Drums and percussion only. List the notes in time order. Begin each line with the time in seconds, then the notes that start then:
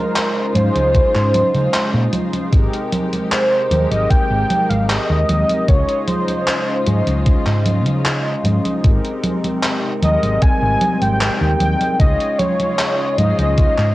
0.16 clap, closed hi-hat, high conga
0.55 closed hi-hat, high conga
0.76 closed hi-hat, high conga
0.95 kick, closed hi-hat, high conga
1.15 clap
1.34 closed hi-hat, high conga
1.55 closed hi-hat, high conga
1.74 clap, closed hi-hat, high conga
2.13 closed hi-hat, high conga
2.33 closed hi-hat, high conga
2.53 kick, closed hi-hat, high conga
2.73 closed hi-hat
2.92 closed hi-hat, high conga
3.13 closed hi-hat, high conga
3.32 clap, closed hi-hat, high conga
3.71 closed hi-hat, high conga
3.92 closed hi-hat, high conga
4.11 kick, closed hi-hat, high conga
4.50 closed hi-hat, high conga
4.71 closed hi-hat, high conga
4.90 clap, closed hi-hat, high conga
5.29 closed hi-hat, high conga
5.49 closed hi-hat, high conga
5.68 kick, closed hi-hat
5.89 closed hi-hat
6.08 closed hi-hat, high conga
6.28 closed hi-hat, high conga
6.47 clap, closed hi-hat, high conga
6.86 closed hi-hat, high conga
7.07 closed hi-hat, high conga
7.26 kick, closed hi-hat, high conga
7.46 clap
7.66 closed hi-hat, high conga
7.86 closed hi-hat, high conga
8.05 clap, closed hi-hat, high conga
8.45 closed hi-hat, high conga
8.65 closed hi-hat, high conga
8.84 kick, closed hi-hat, high conga
9.05 closed hi-hat
9.24 closed hi-hat, high conga
9.44 closed hi-hat, high conga
9.63 clap, closed hi-hat, high conga
10.02 closed hi-hat, high conga
10.23 closed hi-hat, high conga
10.42 kick, closed hi-hat, high conga
10.81 closed hi-hat, high conga
11.02 closed hi-hat, high conga
11.21 clap, closed hi-hat, high conga
11.60 closed hi-hat, high conga
11.81 closed hi-hat, high conga
12.00 kick, closed hi-hat, high conga
12.20 closed hi-hat
12.39 closed hi-hat, high conga
12.60 closed hi-hat, high conga
12.79 clap, closed hi-hat, high conga
13.18 closed hi-hat, high conga
13.39 closed hi-hat, high conga
13.58 kick, closed hi-hat, high conga
13.78 clap